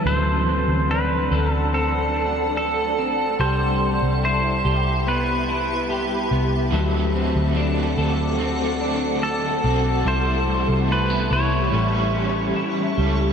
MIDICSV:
0, 0, Header, 1, 6, 480
1, 0, Start_track
1, 0, Tempo, 833333
1, 34, Time_signature, 4, 2, 24, 8
1, 7677, End_track
2, 0, Start_track
2, 0, Title_t, "Ambient pad"
2, 0, Program_c, 0, 92
2, 36, Note_on_c, 0, 69, 69
2, 37, Note_on_c, 0, 74, 64
2, 37, Note_on_c, 0, 78, 67
2, 37, Note_on_c, 0, 81, 81
2, 1935, Note_off_c, 0, 69, 0
2, 1936, Note_off_c, 0, 74, 0
2, 1936, Note_off_c, 0, 78, 0
2, 1957, Note_on_c, 0, 76, 64
2, 1957, Note_on_c, 0, 83, 60
2, 1958, Note_on_c, 0, 67, 70
2, 3852, Note_off_c, 0, 81, 0
2, 3856, Note_off_c, 0, 76, 0
2, 3856, Note_off_c, 0, 83, 0
2, 3857, Note_off_c, 0, 67, 0
2, 3871, Note_on_c, 0, 78, 67
2, 3873, Note_on_c, 0, 69, 79
2, 3874, Note_on_c, 0, 86, 79
2, 3875, Note_on_c, 0, 81, 67
2, 5773, Note_off_c, 0, 78, 0
2, 5774, Note_off_c, 0, 69, 0
2, 5775, Note_off_c, 0, 86, 0
2, 5796, Note_on_c, 0, 67, 71
2, 5796, Note_on_c, 0, 76, 69
2, 5796, Note_on_c, 0, 83, 59
2, 6731, Note_off_c, 0, 81, 0
2, 6745, Note_off_c, 0, 83, 0
2, 6753, Note_on_c, 0, 81, 66
2, 6755, Note_on_c, 0, 85, 84
2, 7677, Note_off_c, 0, 67, 0
2, 7677, Note_off_c, 0, 76, 0
2, 7677, Note_off_c, 0, 81, 0
2, 7677, Note_off_c, 0, 85, 0
2, 7677, End_track
3, 0, Start_track
3, 0, Title_t, "Pedal steel guitar"
3, 0, Program_c, 1, 26
3, 39, Note_on_c, 1, 72, 89
3, 521, Note_off_c, 1, 72, 0
3, 523, Note_on_c, 1, 71, 92
3, 875, Note_off_c, 1, 71, 0
3, 875, Note_on_c, 1, 69, 92
3, 1002, Note_off_c, 1, 69, 0
3, 1004, Note_on_c, 1, 69, 81
3, 1475, Note_off_c, 1, 69, 0
3, 1482, Note_on_c, 1, 69, 80
3, 1959, Note_off_c, 1, 69, 0
3, 1962, Note_on_c, 1, 72, 84
3, 2415, Note_off_c, 1, 72, 0
3, 2447, Note_on_c, 1, 72, 81
3, 2926, Note_off_c, 1, 72, 0
3, 2928, Note_on_c, 1, 71, 75
3, 3618, Note_off_c, 1, 71, 0
3, 5317, Note_on_c, 1, 69, 68
3, 5805, Note_on_c, 1, 72, 91
3, 5810, Note_off_c, 1, 69, 0
3, 6288, Note_off_c, 1, 72, 0
3, 6291, Note_on_c, 1, 71, 82
3, 6506, Note_off_c, 1, 71, 0
3, 6525, Note_on_c, 1, 73, 87
3, 7456, Note_off_c, 1, 73, 0
3, 7677, End_track
4, 0, Start_track
4, 0, Title_t, "Clean electric guitar"
4, 0, Program_c, 2, 27
4, 0, Note_on_c, 2, 61, 49
4, 0, Note_on_c, 2, 64, 56
4, 36, Note_on_c, 2, 54, 72
4, 39, Note_on_c, 2, 69, 60
4, 82, Note_off_c, 2, 64, 0
4, 84, Note_off_c, 2, 61, 0
4, 276, Note_on_c, 2, 60, 44
4, 517, Note_on_c, 2, 62, 50
4, 751, Note_off_c, 2, 69, 0
4, 758, Note_on_c, 2, 69, 59
4, 994, Note_off_c, 2, 60, 0
4, 996, Note_on_c, 2, 60, 55
4, 1230, Note_off_c, 2, 62, 0
4, 1237, Note_on_c, 2, 62, 50
4, 1471, Note_off_c, 2, 69, 0
4, 1478, Note_on_c, 2, 69, 53
4, 1716, Note_off_c, 2, 60, 0
4, 1718, Note_on_c, 2, 60, 45
4, 1955, Note_off_c, 2, 54, 0
4, 1956, Note_off_c, 2, 69, 0
4, 1957, Note_on_c, 2, 55, 68
4, 1960, Note_on_c, 2, 67, 58
4, 2003, Note_off_c, 2, 62, 0
4, 2438, Note_on_c, 2, 64, 59
4, 2671, Note_off_c, 2, 67, 0
4, 2678, Note_on_c, 2, 67, 56
4, 2918, Note_off_c, 2, 60, 0
4, 2920, Note_on_c, 2, 59, 60
4, 3154, Note_off_c, 2, 64, 0
4, 3161, Note_on_c, 2, 64, 49
4, 3390, Note_off_c, 2, 67, 0
4, 3397, Note_on_c, 2, 67, 61
4, 3631, Note_off_c, 2, 59, 0
4, 3638, Note_on_c, 2, 59, 45
4, 3874, Note_off_c, 2, 55, 0
4, 3876, Note_off_c, 2, 67, 0
4, 3876, Note_on_c, 2, 54, 79
4, 3880, Note_on_c, 2, 69, 60
4, 3924, Note_off_c, 2, 59, 0
4, 3925, Note_off_c, 2, 64, 0
4, 4116, Note_on_c, 2, 60, 48
4, 4357, Note_on_c, 2, 62, 51
4, 4588, Note_off_c, 2, 69, 0
4, 4595, Note_on_c, 2, 69, 61
4, 4832, Note_off_c, 2, 60, 0
4, 4834, Note_on_c, 2, 60, 58
4, 5067, Note_off_c, 2, 62, 0
4, 5074, Note_on_c, 2, 62, 51
4, 5306, Note_off_c, 2, 69, 0
4, 5313, Note_on_c, 2, 69, 54
4, 5553, Note_off_c, 2, 60, 0
4, 5555, Note_on_c, 2, 60, 48
4, 5790, Note_off_c, 2, 54, 0
4, 5793, Note_on_c, 2, 55, 70
4, 5794, Note_off_c, 2, 62, 0
4, 5796, Note_on_c, 2, 64, 59
4, 5841, Note_off_c, 2, 69, 0
4, 5842, Note_off_c, 2, 60, 0
4, 6031, Note_off_c, 2, 55, 0
4, 6033, Note_on_c, 2, 55, 51
4, 6272, Note_on_c, 2, 57, 51
4, 6393, Note_off_c, 2, 57, 0
4, 6393, Note_on_c, 2, 59, 47
4, 6510, Note_off_c, 2, 64, 0
4, 6512, Note_on_c, 2, 64, 55
4, 6745, Note_off_c, 2, 55, 0
4, 6752, Note_on_c, 2, 55, 71
4, 6801, Note_off_c, 2, 59, 0
4, 6801, Note_off_c, 2, 64, 0
4, 6993, Note_on_c, 2, 61, 51
4, 7234, Note_on_c, 2, 64, 51
4, 7466, Note_off_c, 2, 55, 0
4, 7472, Note_on_c, 2, 55, 44
4, 7677, Note_off_c, 2, 55, 0
4, 7677, Note_off_c, 2, 61, 0
4, 7677, Note_off_c, 2, 64, 0
4, 7677, End_track
5, 0, Start_track
5, 0, Title_t, "Overdriven electric guitar"
5, 0, Program_c, 3, 29
5, 3866, Note_on_c, 3, 50, 84
5, 3873, Note_on_c, 3, 57, 87
5, 3879, Note_on_c, 3, 60, 80
5, 3883, Note_on_c, 3, 66, 69
5, 3889, Note_on_c, 3, 69, 80
5, 4338, Note_off_c, 3, 57, 0
5, 4345, Note_on_c, 3, 57, 50
5, 4350, Note_off_c, 3, 50, 0
5, 4357, Note_off_c, 3, 60, 0
5, 4358, Note_off_c, 3, 66, 0
5, 4360, Note_on_c, 3, 60, 63
5, 4361, Note_off_c, 3, 69, 0
5, 4371, Note_on_c, 3, 66, 57
5, 4382, Note_on_c, 3, 69, 57
5, 4829, Note_off_c, 3, 57, 0
5, 4830, Note_on_c, 3, 50, 65
5, 4837, Note_on_c, 3, 57, 81
5, 4841, Note_off_c, 3, 60, 0
5, 4841, Note_off_c, 3, 66, 0
5, 4844, Note_on_c, 3, 60, 68
5, 4846, Note_off_c, 3, 69, 0
5, 4847, Note_on_c, 3, 66, 79
5, 4853, Note_on_c, 3, 69, 71
5, 5538, Note_off_c, 3, 69, 0
5, 5545, Note_on_c, 3, 69, 45
5, 5552, Note_off_c, 3, 50, 0
5, 5555, Note_off_c, 3, 57, 0
5, 5556, Note_off_c, 3, 66, 0
5, 5563, Note_on_c, 3, 66, 41
5, 5576, Note_off_c, 3, 60, 0
5, 5578, Note_on_c, 3, 60, 34
5, 5787, Note_on_c, 3, 48, 65
5, 5789, Note_off_c, 3, 69, 0
5, 5793, Note_on_c, 3, 52, 75
5, 5794, Note_off_c, 3, 60, 0
5, 5799, Note_off_c, 3, 66, 0
5, 5799, Note_on_c, 3, 55, 69
5, 5801, Note_on_c, 3, 60, 67
5, 5807, Note_on_c, 3, 64, 72
5, 6261, Note_off_c, 3, 55, 0
5, 6264, Note_on_c, 3, 55, 46
5, 6270, Note_off_c, 3, 48, 0
5, 6277, Note_off_c, 3, 60, 0
5, 6286, Note_off_c, 3, 64, 0
5, 6289, Note_on_c, 3, 64, 53
5, 6298, Note_on_c, 3, 71, 57
5, 6744, Note_on_c, 3, 45, 69
5, 6747, Note_off_c, 3, 55, 0
5, 6748, Note_off_c, 3, 52, 0
5, 6751, Note_on_c, 3, 52, 60
5, 6754, Note_on_c, 3, 55, 67
5, 6760, Note_on_c, 3, 61, 69
5, 6761, Note_off_c, 3, 64, 0
5, 6764, Note_on_c, 3, 67, 63
5, 6765, Note_off_c, 3, 71, 0
5, 6767, Note_on_c, 3, 69, 68
5, 7460, Note_off_c, 3, 69, 0
5, 7463, Note_on_c, 3, 69, 43
5, 7469, Note_off_c, 3, 45, 0
5, 7469, Note_off_c, 3, 67, 0
5, 7472, Note_off_c, 3, 52, 0
5, 7474, Note_off_c, 3, 55, 0
5, 7476, Note_on_c, 3, 67, 47
5, 7477, Note_off_c, 3, 61, 0
5, 7486, Note_on_c, 3, 61, 44
5, 7495, Note_on_c, 3, 55, 43
5, 7677, Note_off_c, 3, 55, 0
5, 7677, Note_off_c, 3, 61, 0
5, 7677, Note_off_c, 3, 67, 0
5, 7677, Note_off_c, 3, 69, 0
5, 7677, End_track
6, 0, Start_track
6, 0, Title_t, "Picked electric bass"
6, 0, Program_c, 4, 34
6, 32, Note_on_c, 4, 38, 94
6, 375, Note_off_c, 4, 38, 0
6, 392, Note_on_c, 4, 38, 85
6, 735, Note_off_c, 4, 38, 0
6, 756, Note_on_c, 4, 38, 81
6, 1714, Note_off_c, 4, 38, 0
6, 1714, Note_on_c, 4, 35, 70
6, 1942, Note_off_c, 4, 35, 0
6, 1957, Note_on_c, 4, 36, 100
6, 2297, Note_off_c, 4, 36, 0
6, 2318, Note_on_c, 4, 36, 77
6, 2658, Note_off_c, 4, 36, 0
6, 2678, Note_on_c, 4, 36, 81
6, 3613, Note_off_c, 4, 36, 0
6, 3637, Note_on_c, 4, 36, 74
6, 3863, Note_off_c, 4, 36, 0
6, 3875, Note_on_c, 4, 38, 90
6, 4216, Note_off_c, 4, 38, 0
6, 4237, Note_on_c, 4, 38, 85
6, 4577, Note_off_c, 4, 38, 0
6, 4595, Note_on_c, 4, 38, 80
6, 5531, Note_off_c, 4, 38, 0
6, 5554, Note_on_c, 4, 35, 82
6, 5782, Note_off_c, 4, 35, 0
6, 5792, Note_on_c, 4, 36, 95
6, 6135, Note_off_c, 4, 36, 0
6, 6155, Note_on_c, 4, 36, 89
6, 6496, Note_off_c, 4, 36, 0
6, 6515, Note_on_c, 4, 36, 84
6, 6742, Note_off_c, 4, 36, 0
6, 6755, Note_on_c, 4, 33, 75
6, 7211, Note_off_c, 4, 33, 0
6, 7476, Note_on_c, 4, 37, 69
6, 7677, Note_off_c, 4, 37, 0
6, 7677, End_track
0, 0, End_of_file